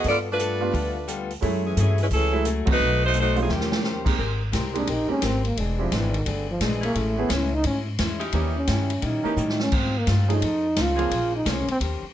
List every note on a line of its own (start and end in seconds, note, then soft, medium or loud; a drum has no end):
0.04 0.70 G2 medium
0.04 0.27 G3 soft
0.04 0.27 B3 soft
0.04 0.28 F4 soft
0.04 0.28 A4 medium
0.04 kick soft
0.04 open hi-hat soft
0.08 0.18 B3 medium
0.08 0.18 F4 medium
0.08 0.17 A4 medium
0.08 0.17 D5 loud
0.32 1.28 A3 medium
0.32 1.28 D4 medium
0.32 1.29 F4 medium
0.32 1.28 B4 medium
0.39 0.62 G3 medium
0.39 0.62 B3 medium
0.39 0.62 F4 medium
0.39 0.63 A4 medium
0.39 closed hi-hat medium
0.61 0.72 G3 medium
0.61 0.72 A3 medium
0.61 0.72 B3 medium
0.61 0.72 D4 medium
0.61 0.72 F4 medium
0.72 1.39 D2 medium
0.72 0.96 G3 medium
0.72 0.96 B3 medium
0.72 0.96 F4 medium
0.72 0.97 A4 medium
0.72 kick soft
0.72 open hi-hat soft
1.08 1.31 G3 medium
1.08 1.31 B3 medium
1.08 1.31 F4 medium
1.08 1.31 A4 medium
1.08 closed hi-hat medium
1.30 open hi-hat soft
1.41 1.74 F#2 medium
1.41 1.61 F#3 medium
1.41 1.65 F#3 medium
1.41 1.61 G#3 medium
1.41 1.61 A3 medium
1.41 1.66 A3 medium
1.41 1.62 C#4 medium
1.41 1.62 E4 medium
1.41 1.66 E4 medium
1.41 1.66 G#4 medium
1.41 kick soft
1.41 open hi-hat soft
1.66 1.77 E3 medium
1.66 1.77 A3 medium
1.66 1.77 C#4 medium
1.66 1.77 G#4 medium
1.77 2.09 G2 medium
1.77 1.99 E3 medium
1.77 2.00 F#3 medium
1.77 2.00 A3 medium
1.77 1.99 A3 medium
1.77 1.99 C#4 medium
1.77 2.00 E4 medium
1.77 2.00 G#4 medium
1.77 1.99 G#4 medium
1.77 closed hi-hat medium
1.98 2.06 G#3 medium
1.98 2.07 C#4 medium
1.98 open hi-hat soft
2.02 2.07 E4 medium
2.02 2.07 B4 medium
2.11 2.63 C#2 medium
2.11 2.44 E3 medium
2.11 2.34 F#3 soft
2.11 2.34 A3 medium
2.11 2.44 C#4 medium
2.11 2.35 E4 medium
2.11 2.35 G#4 medium
2.11 2.44 G#4 medium
2.11 2.44 A4 medium
2.11 kick soft
2.11 open hi-hat soft
2.32 2.44 F#3 medium
2.32 2.44 G#3 medium
2.32 2.44 A3 medium
2.32 2.44 C#4 medium
2.32 2.44 E4 medium
2.45 2.68 F#3 medium
2.45 2.69 A3 medium
2.45 2.69 E4 medium
2.45 2.69 G#4 medium
2.45 closed hi-hat medium
2.65 2.79 C#2 medium
2.65 2.78 F#3 medium
2.65 2.78 A3 medium
2.65 2.78 B3 medium
2.65 2.78 C4 medium
2.65 2.78 F#4 medium
2.65 kick medium
2.65 crash medium
2.72 3.02 A3 medium
2.72 3.02 D#4 loud
2.72 3.02 F#4 medium
2.72 3.02 B4 loud
2.80 3.45 B1 medium
2.80 3.03 B2 soft
2.80 3.04 A3 soft
2.80 3.04 C4 soft
2.80 3.04 D#4 medium
3.06 3.16 A3 medium
3.06 3.16 D#4 medium
3.06 3.16 F#4 medium
3.06 3.15 C5 loud
3.14 3.37 B2 medium
3.14 3.38 A3 medium
3.14 3.38 C4 medium
3.14 3.38 D#4 medium
3.14 closed hi-hat medium
3.20 3.38 A3 medium
3.20 3.38 D#4 medium
3.20 3.38 F#4 medium
3.20 3.38 C5 loud
3.35 3.47 G3 medium
3.35 3.47 A#3 medium
3.35 3.47 C4 medium
3.35 3.47 C#4 medium
3.35 3.48 F4 medium
3.35 open hi-hat soft
3.42 3.52 E3 medium
3.42 3.52 A3 medium
3.42 3.52 C4 medium
3.42 3.52 G#4 medium
3.49 4.15 D#2 medium
3.49 3.72 D#3 soft
3.49 4.07 A#3 medium
3.49 3.73 C#4 soft
3.49 4.07 C#4 medium
3.49 3.73 G4 soft
3.49 4.07 G4 medium
3.49 3.73 C5 medium
3.49 snare medium
3.53 4.08 F3 medium
3.60 snare medium
3.72 snare medium
3.83 4.06 D#3 medium
3.83 4.07 C#4 medium
3.83 4.07 G4 medium
3.83 4.07 C5 medium
3.83 snare medium
4.04 4.16 G#3 medium
4.04 4.16 A#3 medium
4.04 4.17 C4 medium
4.04 4.17 D#4 medium
4.04 4.17 G4 medium
4.04 kick medium
4.04 crash medium
4.17 4.52 G#1 medium
4.17 4.41 G#3 soft
4.17 4.33 G#3 medium
4.17 4.33 C4 medium
4.17 4.41 C4 soft
4.17 4.33 G4 medium
4.17 4.42 G4 soft
4.17 4.33 A#4 medium
4.17 4.42 A#4 medium
4.17 kick soft
4.52 4.86 C2 medium
4.52 4.76 G#3 medium
4.52 4.76 C4 medium
4.52 4.76 G4 medium
4.52 4.76 A#4 medium
4.52 kick soft
4.52 snare medium
4.52 hi-hat pedal medium
4.52 ride medium
4.74 4.85 G#3 medium
4.74 4.86 A#3 medium
4.74 4.86 C4 medium
4.74 4.92 D4 medium
4.74 4.86 D#4 medium
4.74 4.86 G4 medium
4.74 ride soft
4.87 5.08 A#1 medium
4.87 5.11 G#3 soft
4.87 5.11 C4 soft
4.87 5.10 D#4 medium
4.87 5.11 G4 soft
4.87 5.11 A#4 soft
4.87 kick soft
4.87 ride medium
5.08 5.20 G#3 medium
5.08 5.20 A#3 medium
5.08 5.20 C4 medium
5.08 5.27 C#4 medium
5.08 5.20 D#4 medium
5.08 5.21 G4 medium
5.08 muted upright bass stroke soft
5.22 5.56 G#1 medium
5.22 5.45 G#3 soft
5.22 5.45 C4 medium
5.22 5.46 G4 medium
5.22 5.46 A#4 medium
5.22 kick soft
5.22 snare medium
5.22 hi-hat pedal medium
5.22 ride medium
5.26 5.45 C4 medium
5.45 5.62 A#3 medium
5.45 ride soft
5.57 5.90 E1 medium
5.57 5.80 E3 soft
5.57 5.80 G#3 medium
5.57 5.81 C4 soft
5.57 5.81 D4 soft
5.57 5.81 G#4 soft
5.57 kick soft
5.57 ride medium
5.78 5.96 F3 medium
5.78 5.90 G#3 medium
5.78 5.90 C4 medium
5.78 5.90 D4 medium
5.78 5.90 E4 medium
5.78 5.90 G4 medium
5.92 6.25 G#1 loud
5.92 6.15 E3 medium
5.92 6.16 E3 medium
5.92 6.15 C4 medium
5.92 6.15 D4 medium
5.92 6.15 G#4 medium
5.92 kick soft
5.92 snare medium
5.92 hi-hat pedal medium
5.92 ride medium
6.14 6.29 D#3 medium
6.14 ride soft
6.26 6.60 G1 medium
6.26 6.49 D3 medium
6.26 6.49 E3 soft
6.26 6.49 C4 soft
6.26 6.50 D4 soft
6.26 6.50 G#4 soft
6.26 kick soft
6.26 ride medium
6.51 6.64 F3 medium
6.60 6.94 A#1 medium
6.60 6.84 E3 medium
6.60 6.84 G#3 medium
6.60 6.84 C4 medium
6.60 6.84 D4 medium
6.60 6.84 G#4 medium
6.60 kick soft
6.60 snare medium
6.60 hi-hat pedal medium
6.60 ride medium
6.80 7.26 E3 medium
6.80 7.27 A3 medium
6.80 7.26 C#4 medium
6.80 7.26 G#4 medium
6.80 ride soft
6.85 6.99 A#3 medium
6.94 7.29 A1 medium
6.94 7.18 A2 soft
6.94 7.18 G#3 soft
6.94 7.18 A3 medium
6.94 7.19 C#4 soft
6.94 7.19 E4 soft
6.94 kick soft
6.94 ride medium
7.17 7.29 A3 medium
7.17 7.29 B3 medium
7.17 7.36 B3 medium
7.17 7.29 C#4 medium
7.17 7.29 E4 medium
7.17 7.29 G#4 medium
7.29 7.63 C#2 loud
7.29 7.53 A2 medium
7.29 7.53 G#3 medium
7.29 7.53 C#4 medium
7.29 7.53 E4 medium
7.29 kick soft
7.29 snare medium
7.29 hi-hat pedal medium
7.29 ride medium
7.34 7.56 C#4 medium
7.54 7.65 D#4 loud
7.63 7.98 G#2 medium
7.63 7.87 A2 soft
7.63 7.87 G#3 medium
7.63 7.88 C#4 soft
7.63 7.88 E4 medium
7.63 kick soft
7.63 ride medium
7.67 7.79 C#4 medium
7.98 8.32 E2 medium
7.98 8.22 A2 medium
7.98 8.22 G#3 medium
7.98 8.23 C#4 medium
7.98 8.23 E4 medium
7.98 kick soft
7.98 snare medium
7.98 hi-hat pedal medium
7.98 ride medium
8.18 8.65 C#4 medium
8.18 8.64 D#4 medium
8.18 8.65 E4 medium
8.18 8.65 G4 loud
8.18 ride soft
8.32 8.67 D#2 medium
8.32 8.56 D#3 medium
8.32 8.54 E3 medium
8.32 8.57 G3 soft
8.32 8.54 A#3 medium
8.32 8.57 C#4 medium
8.32 8.54 C#4 soft
8.32 8.53 D#4 medium
8.32 8.57 E4 medium
8.32 8.54 G4 medium
8.32 kick soft
8.32 ride medium
8.57 9.06 C#4 medium
8.67 9.02 G2 medium
8.67 8.91 D#3 medium
8.67 8.92 G3 medium
8.67 8.92 C#4 medium
8.67 8.92 E4 medium
8.67 kick soft
8.67 snare medium
8.67 hi-hat pedal medium
8.67 ride medium
8.90 ride soft
9.01 9.23 A#2 medium
9.01 9.25 D#3 soft
9.01 9.26 G3 soft
9.01 9.26 C#4 soft
9.01 9.61 D#4 medium
9.01 9.27 E4 soft
9.01 kick soft
9.01 ride medium
9.23 9.35 E3 medium
9.23 9.33 E3 medium
9.23 9.36 A#3 medium
9.23 9.36 C#4 medium
9.23 9.33 C#4 medium
9.23 9.36 D#4 medium
9.23 9.33 D#4 medium
9.23 9.33 G4 medium
9.23 9.36 A#4 medium
9.23 muted upright bass stroke soft
9.37 9.71 A2 medium
9.37 9.61 D#3 medium
9.37 9.61 G3 medium
9.37 9.61 C#4 medium
9.37 9.61 E4 medium
9.37 hi-hat pedal medium
9.49 snare medium
9.60 9.78 C#4 medium
9.60 snare medium
9.72 9.95 G#2 soft
9.72 10.06 G#2 medium
9.72 9.96 G3 soft
9.72 9.96 C4 soft
9.72 9.96 F4 soft
9.72 kick medium
9.72 crash medium
9.76 10.00 C4 medium
9.98 10.09 A#3 medium
10.07 10.41 G2 medium
10.07 10.30 G#2 medium
10.07 10.30 G3 medium
10.07 10.31 C4 medium
10.07 10.31 F4 medium
10.07 kick soft
10.07 snare medium
10.07 hi-hat pedal medium
10.07 ride medium
10.28 10.40 F3 medium
10.28 10.40 A3 medium
10.28 10.40 C#4 medium
10.28 10.40 D#4 medium
10.28 10.40 G#4 medium
10.28 ride medium
10.32 10.83 D#4 medium
10.41 10.76 F2 medium
10.41 10.65 F3 soft
10.41 10.65 C#4 soft
10.41 10.65 D#4 soft
10.41 10.66 A4 medium
10.41 kick soft
10.41 ride medium
10.76 11.10 C#2 medium
10.76 10.99 F3 medium
10.76 11.00 C#4 medium
10.76 11.00 D#4 medium
10.76 11.00 A4 medium
10.76 kick soft
10.76 snare medium
10.76 hi-hat pedal medium
10.76 ride medium
10.82 11.35 F4 loud
10.96 11.42 C#3 medium
10.96 11.09 F3 medium
10.96 11.42 A#3 medium
10.96 11.10 A#3 medium
10.96 11.42 C4 medium
10.96 11.10 C4 medium
10.96 11.10 C#4 medium
10.96 11.10 F4 medium
10.96 11.42 G#4 loud
10.96 ride soft
11.11 11.45 A#1 medium
11.11 11.34 A#3 soft
11.11 11.34 C#4 soft
11.11 11.35 G#4 soft
11.11 11.35 C5 soft
11.11 kick soft
11.11 ride medium
11.36 11.52 D#4 medium
11.45 11.66 C2 loud
11.45 11.69 A#3 medium
11.45 11.69 C#4 medium
11.45 11.69 G#4 medium
11.45 11.70 C5 medium
11.45 kick soft
11.45 snare medium
11.45 hi-hat pedal medium
11.45 ride medium
11.51 11.70 C#4 medium
11.67 11.78 C4 loud
11.67 muted upright bass stroke soft
11.67 ride medium
11.80 12.01 D#2 medium
11.80 12.04 D#3 soft
11.80 12.04 C#4 soft
11.80 12.04 G4 medium
11.80 12.04 C5 soft
11.80 kick soft
11.80 ride medium
12.02 muted upright bass stroke soft